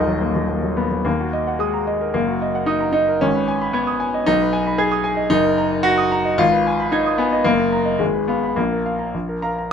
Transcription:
Already playing: D#1 D#2 D#4 A#4 D#5
0.08 F#3
0.21 A#3
0.36 F#3
0.49 A#3
0.63 F#3
0.77 A#3 B3
0.91 F#3
1.05 D#2 A#3
1.20 F#4
1.33 D#5
1.47 F#5
1.59 G#3 D#6
1.74 A#5
1.87 D#5
2.01 A#4
2.14 F#1 A#3
2.28 F#4
2.42 D#5
2.55 F#5
2.66 D#4 D#6
2.81 A#5
2.93 D#4 D#5
3.08 A#4
3.21 G#1 C#4
3.35 B4
3.48 G#5
3.62 B5
3.73 B3 G#6
3.87 D#6
4.00 G#5
4.14 D#5
4.26 B1 D#4
4.42 B4
4.53 G#5
4.67 B5
4.78 G#4 G#6
4.92 D#6
5.04 G#5
5.17 D#5
5.30 F#1 D#4
5.44 A#4
5.58 A#5
5.72 D#5
5.83 F#4 A#6
5.98 D#6
6.12 A#5
6.25 D#5
6.38 G#1 F4
6.52 B4
6.67 G#5
6.80 B5
6.92 D#4 G#6
7.06 D#6
7.18 B3 G#5
7.33 D#5
7.44 F#1 A#3
7.59 A#4
7.73 A#5
7.85 D#5
7.99 G#1 G#3
8.14 B4
8.28 B3 F5
8.43 B5
8.56 A#1 A#3
8.72 A#4
8.86 F5
8.99 A#5
9.14 A#1
9.29 A#4
9.42 A#4 F5 A#5
9.58 A#5

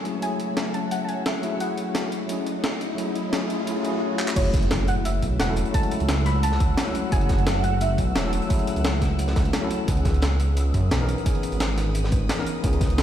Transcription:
Already playing: F#3 G#3 A3 C#4 E4 F#4 E5 G#5, riser
0.04 F#3 A3 C#4 E4 G#4, closed hi-hat
0.19 F#3 A3 C#4 G#5, closed hi-hat
0.24 E4 G#4
0.40 closed hi-hat
0.57 snare, closed hi-hat
0.74 A5, closed hi-hat
0.91 F#5, closed hi-hat
1.04 A5
1.08 G#5, closed hi-hat
1.26 E5, snare, closed hi-hat
1.42 F#3 A3 C#4 E4 G#4, closed hi-hat
1.57 F#3 A3 C#4 D#5 F#5, closed hi-hat
1.62 E4 G#4
1.78 closed hi-hat
1.95 snare, closed hi-hat
2.12 closed hi-hat
2.26 F#3 A3 C#4, closed hi-hat
2.31 E4 G#4
2.47 closed hi-hat
2.64 snare, closed hi-hat
2.81 closed hi-hat
2.95 F#3 A3 C#4, closed hi-hat
3.00 E4 G#4
3.16 closed hi-hat
3.30 F#3 A3 C#4, snare, closed hi-hat
3.35 E4 G#4
3.50 closed hi-hat
3.64 F#3 A3 C#4, closed hi-hat
3.69 E4 G#4
3.81 F#3 A3 C#4, closed hi-hat
3.86 E4 G#4
4.19 clap
4.28 clap
4.33 F#1 F#3 A3 C#4 C#5 F#5 E6, kick, closed hi-hat, crash, impact
4.38 E4 G#4
4.45 closed hi-hat
4.54 kick, snare, closed hi-hat
4.62 closed hi-hat
4.71 snare, closed hi-hat
4.88 F#5, closed hi-hat
5.05 E5, closed hi-hat
5.22 B1, kick, closed hi-hat
5.40 E1 F#5, snare, closed hi-hat
5.47 F#3 A3 C#4 E4 A4
5.56 closed hi-hat
5.65 closed hi-hat
5.71 F#3 A3 C#4 A5, kick, closed hi-hat
5.76 G#3 E4
5.83 closed hi-hat
5.91 closed hi-hat
6.00 C#2, closed hi-hat
6.09 snare, closed hi-hat
6.25 B5, snare, closed hi-hat
6.43 A5, closed hi-hat
6.52 snare
6.60 C#2, kick, closed hi-hat
6.77 snare, closed hi-hat
6.85 F#3 A3 C#4 E4 A4, snare
6.95 closed hi-hat
7.09 F#1 F#3 A3 C#4 G#5, kick, closed hi-hat
7.14 E4 G#4
7.21 closed hi-hat
7.29 kick, snare, closed hi-hat
7.38 closed hi-hat
7.46 snare, closed hi-hat
7.64 F#5, closed hi-hat
7.81 E5, closed hi-hat
7.98 B1, kick, closed hi-hat
8.16 E1 C#5, snare, closed hi-hat
8.23 F#3 A3 C#4 E4 A4
8.33 closed hi-hat
8.42 closed hi-hat
8.47 F#3 A3 C#4, kick, closed hi-hat
8.52 E4 G#4
8.59 closed hi-hat
8.67 closed hi-hat
8.76 C#2, closed hi-hat
8.84 snare, closed hi-hat
9.01 kick, snare, closed hi-hat
9.19 closed hi-hat
9.28 snare, closed hi-hat
9.36 C#2, kick, snare, closed hi-hat
9.45 closed hi-hat
9.53 snare, closed hi-hat
9.61 F#3 A3 C#4 E4 A4
9.70 closed hi-hat
9.85 C#2 E3 B3 C#4 B4 D#6, kick, closed hi-hat
9.90 D#4 G#4
9.97 closed hi-hat
10.05 kick, snare, closed hi-hat
10.14 closed hi-hat
10.22 snare, closed hi-hat
10.40 closed hi-hat
10.57 closed hi-hat
10.74 F#2, kick, closed hi-hat
10.91 B1, snare, closed hi-hat
10.99 E3 B3 C#4 D#4 A#4
11.09 closed hi-hat
11.18 closed hi-hat
11.23 E3 B3 C#4, kick, closed hi-hat
11.28 D#4 G#4
11.35 closed hi-hat
11.43 closed hi-hat
11.52 G#1, closed hi-hat
11.60 snare, closed hi-hat
11.78 snare, closed hi-hat
11.95 closed hi-hat
12.04 snare
12.12 G#1, kick, closed hi-hat
12.29 snare, closed hi-hat
12.37 E3 B3 C#4 D#4 A#4, snare
12.46 closed hi-hat
12.61 C#2 E3 B3 C#4, kick, closed hi-hat
12.66 D#4 G#4
12.73 closed hi-hat
12.81 kick, snare, closed hi-hat
12.90 closed hi-hat
12.98 snare, closed hi-hat

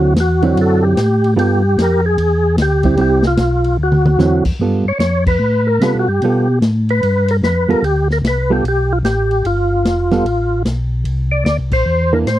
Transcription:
Already playing: D2 D3 F#3 C4 E4 F#4
0.14 E2, snare, hi-hat pedal, ride
0.20 F#4
0.42 D3 F#3 C4 E4, ride
0.55 F#2, ride
0.61 A4
0.83 G4
0.97 A2, snare, hi-hat pedal, ride
1.24 ride
1.36 G2 G3 B3 F4 G4 A4, ride
1.78 F2, snare, hi-hat pedal, ride
1.82 A#4
2.06 G#4
2.18 E2, ride
2.57 D2, snare, hi-hat pedal, ride
2.62 G4
2.83 G3 C4 E4, kick, ride
2.97 C2 G3 C4 E4, ride
3.01 G4
3.23 snare
3.27 F4
3.37 B1, snare, hi-hat pedal, ride
3.64 ride
3.78 D2
3.83 F#4
3.92 mid tom
4.05 mid tom
4.17 E2 D3 F#3 C4 E4, snare, hi-hat pedal
4.45 E2, kick, crash
4.59 G2 G3 B3 F4 A4
4.85 G2 C#5
4.99 F2 C#5, snare, hi-hat pedal, ride
5.26 B4, kick, crash
5.39 A2
5.67 A#4
5.80 C3 G3 B3 F4 A4 B4, snare, hi-hat pedal, ride
5.95 B2
5.99 F#4
6.08 G2 G4
6.22 B2 G3 B3 F4 A4, ride
6.61 A2, snare, hi-hat pedal, ride
6.89 B4, ride
7.03 G2, ride
7.28 A#4, ride
7.43 F2 B4, snare, hi-hat pedal
7.69 F2 G3 B3 F4 A4 A#4, ride
7.82 D2 G4, ride
8.10 A#4, snare
8.22 C2, snare, hi-hat pedal, ride
8.28 B4
8.50 G3 B3 F4 G4 A4
8.63 B1, ride
8.68 G4
8.93 F4
9.03 A1 G4, snare, hi-hat pedal, ride
9.31 ride
9.45 G1 F4, ride
9.84 F1, snare, hi-hat pedal, ride
10.11 G3 B3 F4 A4, snare, ride
10.24 A1, ride
10.65 B1, snare, hi-hat pedal, ride
11.04 C2, ride
11.31 D5
11.45 D2 D5, snare, hi-hat pedal, ride
11.59 C2
11.70 A#1 C5, kick, crash
11.86 E2
12.13 E3 A#3 D4 A#4
12.26 A2 C5, snare, hi-hat pedal, ride

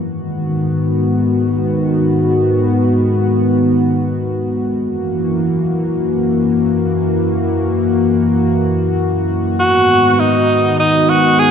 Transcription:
0.00 G#2 D#3 B3 F#4
4.80 F#2 E3 A#3 F#4
9.60 G#2 D#3 B3 F#4
10.20 D#4
10.80 D#4
11.09 F#4
11.39 G#4

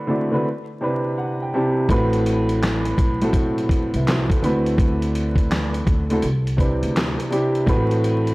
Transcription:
Already playing: D3 A3 C4 E4 F#4 B4
0.07 D3 A3 C4 E4 F#4 D5
0.31 D3 A3 C4 E4 F#4 B4
0.81 C3 C4 D4 E4 B4
1.18 F#5
1.42 G5
1.54 C3 C4 D4 E4 G4 A5
1.89 A1 A2 A3 C4 F#4 B4, kick, closed hi-hat
2.13 closed hi-hat
2.26 closed hi-hat
2.49 closed hi-hat
2.63 snare, clap, closed hi-hat
2.85 closed hi-hat
2.98 B1, kick, closed hi-hat
3.21 A2 A3 C4 F#4 A4, closed hi-hat
3.33 kick, closed hi-hat
3.58 closed hi-hat
3.69 kick, closed hi-hat
3.94 C2 B4 E5, closed hi-hat
4.07 F#4 C5, snare, clap, closed hi-hat
4.30 E4 A4, kick, closed hi-hat
4.42 D2 D3 A3 C4 E4 F#4 B4, closed hi-hat
4.66 closed hi-hat
4.78 kick, closed hi-hat
5.02 closed hi-hat
5.15 closed hi-hat
5.36 kick, closed hi-hat
5.51 snare, clap, closed hi-hat
5.74 closed hi-hat
5.87 D2, kick, closed hi-hat
6.10 D3 A3 C4 E4 F#4 A4, closed hi-hat
6.22 C2, closed hi-hat
6.47 closed hi-hat
6.57 C3 C4 D4 E4 B4, kick, closed hi-hat
6.83 D2, closed hi-hat
6.96 snare, clap, closed hi-hat
7.20 closed hi-hat
7.30 C3 C4 D4 E4 G4, closed hi-hat
7.55 closed hi-hat
7.66 A1 A2 A3 C4 F#4 B4, kick, closed hi-hat
7.91 closed hi-hat
8.04 closed hi-hat
8.27 closed hi-hat

